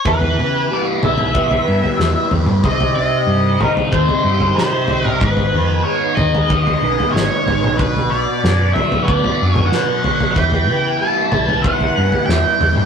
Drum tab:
SD |------------o---|------------o---|------------o---|----o-------o---|
T2 |------o--------o|------o--------o|------o--------o|-----------o----|
FT |oo----oooo-o--o-|oo----oooo-o--o-|oo----oooo-o--o-|oo----oooo-o--oo|
BD |o-------o-------|o-------o-------|o-------o-------|o-------o-------|

SD |------------o---|
T2 |------o--------o|
FT |oo----oooo-o--o-|
BD |o-------o-------|